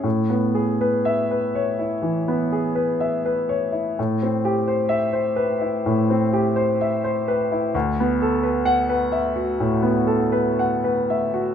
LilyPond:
\new Staff \with { instrumentName = "Grand piano" } { \time 4/4 \key d \lydian \tempo 4 = 62 << { r4 e''8 r2 r8 | r4 e''8 r2 r8 | r4 fis''8 r2 r8 | } \\ { a,16 b16 gis'16 b'8 b'16 cis''16 e'16 e16 b16 gis'16 b'16 e''16 b'16 cis''16 e'16 | a,16 c'16 g'16 c''8 c''16 b'16 e'16 a,16 c'16 g'16 c''16 e''16 c''16 b'16 e'16 | d,16 b16 a'16 b'8 b'16 e''16 fis'16 a,16 b16 a'16 b'16 fis''16 b'16 e''16 fis'16 | } >> }